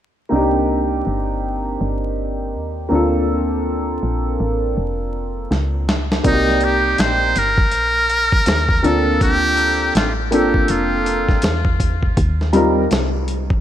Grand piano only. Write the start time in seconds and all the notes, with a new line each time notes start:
0.29 A#3 C4 D4
0.33 D#4 G4
2.89 A#3 C4 D4
2.93 F4 A4
6.23 A#3 C4 D#4 F#4 D5
6.33 G4
8.83 A#3 C4 D4 F4 A4
10.31 A#3 C4 D4 F4 A4
12.53 G3 C4 D#4 F4 A#4